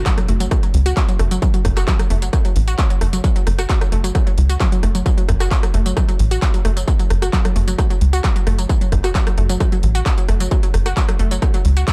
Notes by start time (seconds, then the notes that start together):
Already playing: impact
0.06 F#3, kick, clap, closed hi-hat, tambourine
0.18 F#3, cross-stick, closed hi-hat, tambourine
0.28 F#1 A3, open hi-hat
0.40 F#3, closed hi-hat, tambourine
0.51 F#3, kick, cross-stick, closed hi-hat, tambourine
0.63 F#3, closed hi-hat, tambourine
0.74 C#2, open hi-hat
0.86 F#4, closed hi-hat, tambourine
0.97 F#3, kick, clap, closed hi-hat, tambourine
1.09 F#3, closed hi-hat, tambourine
1.19 F#1 A3, cross-stick, open hi-hat
1.31 F#3, closed hi-hat, tambourine
1.42 F#3, kick, closed hi-hat, tambourine
1.54 F#3, closed hi-hat, tambourine
1.65 F#1, kick, cross-stick, open hi-hat
1.77 F#4, cross-stick, clap, closed hi-hat, tambourine
1.88 F#3, kick, clap, closed hi-hat, tambourine
1.99 F#3, cross-stick, closed hi-hat, tambourine
2.10 F#1 A3, open hi-hat
2.22 F#3, closed hi-hat, tambourine
2.33 F#3, kick, cross-stick, closed hi-hat, tambourine
2.45 F#3, closed hi-hat, tambourine
2.56 A1, open hi-hat
2.68 F#4, closed hi-hat, tambourine
2.78 F#3, kick, clap, closed hi-hat, tambourine
2.90 F#3, closed hi-hat, tambourine
3.01 F#1 A3, cross-stick, open hi-hat
3.13 F#3, closed hi-hat, tambourine
3.24 F#3, kick, closed hi-hat, tambourine
3.36 F#3, closed hi-hat, tambourine
3.47 F#1, cross-stick, open hi-hat
3.59 F#4, cross-stick, closed hi-hat, tambourine
3.69 F#3, kick, clap, closed hi-hat, tambourine
3.81 F#3, cross-stick, closed hi-hat, tambourine
3.92 F#1 A3, open hi-hat
4.04 F#3, closed hi-hat, tambourine
4.15 F#3, kick, cross-stick, closed hi-hat, tambourine
4.27 F#3, closed hi-hat, tambourine
4.38 C#2, open hi-hat
4.49 F#4, closed hi-hat, tambourine
4.60 F#3, kick, clap, closed hi-hat, tambourine
4.72 F#3, closed hi-hat, tambourine
4.83 F#1 A3, cross-stick, open hi-hat
4.95 F#3, closed hi-hat, tambourine
5.06 F#3, kick, closed hi-hat, tambourine
5.18 F#3, closed hi-hat, tambourine
5.29 F#1, kick, cross-stick, open hi-hat
5.40 F#4, cross-stick, clap, closed hi-hat, tambourine
5.51 F#3, kick, clap, closed hi-hat, tambourine
5.63 F#3, cross-stick, closed hi-hat, tambourine
5.74 F#1 A3, open hi-hat
5.86 F#3, closed hi-hat, tambourine
5.97 F#3, kick, cross-stick, closed hi-hat, tambourine
6.09 F#3, closed hi-hat, tambourine
6.19 A1, open hi-hat
6.31 F#4, closed hi-hat, tambourine
6.42 F#3, kick, clap, closed hi-hat, tambourine
6.54 F#3, closed hi-hat, tambourine
6.65 F#1 A3, cross-stick, open hi-hat
6.77 F#3, closed hi-hat, tambourine
6.88 F#3, kick, closed hi-hat, tambourine
6.99 F#3, closed hi-hat, tambourine
7.10 F#1, cross-stick, open hi-hat
7.22 F#4, cross-stick, closed hi-hat, tambourine
7.33 F#3, kick, clap, closed hi-hat, tambourine
7.45 F#3, cross-stick, closed hi-hat, tambourine
7.56 F#1 A3, open hi-hat
7.68 F#3, closed hi-hat, tambourine
7.78 F#3, kick, cross-stick, closed hi-hat, tambourine
7.90 F#3, closed hi-hat, tambourine
8.01 C#2, open hi-hat
8.13 F#4, closed hi-hat, tambourine
8.24 F#3, kick, clap, closed hi-hat, tambourine
8.36 F#3, closed hi-hat, tambourine
8.47 F#1 A3, cross-stick, open hi-hat
8.59 F#3, closed hi-hat, tambourine
8.69 F#3, kick, closed hi-hat, tambourine
8.81 F#3, closed hi-hat, tambourine
8.92 F#1, kick, cross-stick, open hi-hat
9.04 F#4, cross-stick, clap, closed hi-hat, tambourine
9.15 F#3, kick, clap, closed hi-hat, tambourine
9.27 F#3, cross-stick, closed hi-hat, tambourine
9.38 F#1 A3, open hi-hat
9.49 F#3, closed hi-hat, tambourine
9.60 F#3, kick, cross-stick, closed hi-hat, tambourine
9.72 F#3, closed hi-hat, tambourine
9.83 A1, open hi-hat
9.95 F#4, closed hi-hat, tambourine
10.06 F#3, kick, clap, closed hi-hat, tambourine
10.18 F#3, closed hi-hat, tambourine
10.29 F#1 A3, cross-stick, open hi-hat
10.40 F#3, closed hi-hat, tambourine
10.51 F#3, kick, closed hi-hat, tambourine
10.63 F#3, closed hi-hat, tambourine
10.74 F#1, cross-stick, open hi-hat
10.86 F#4, cross-stick, closed hi-hat, tambourine
10.97 F#3, kick, clap, closed hi-hat, tambourine
11.09 F#3, cross-stick, closed hi-hat, tambourine
11.19 F#1 A3, open hi-hat
11.31 F#3, closed hi-hat, tambourine
11.42 F#3, kick, cross-stick, closed hi-hat, tambourine
11.54 F#3, closed hi-hat, tambourine
11.65 C#2, open hi-hat
11.77 F#4, closed hi-hat, tambourine
11.88 F#3, kick, clap, closed hi-hat, tambourine